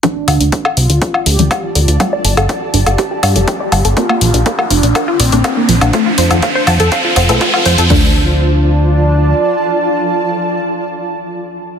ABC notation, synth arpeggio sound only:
X:1
M:4/4
L:1/16
Q:1/4=122
K:Dm
V:1 name="Synth arpeggio sound"
D D A F d A f F d D A, F D D A F | g d a A g G D A G G d A g d a A | B B, F, D B, B, F D B F d D B B, F, D | F F c A f c a A f F C A F F c A |
D2 z12 z2 | z16 |]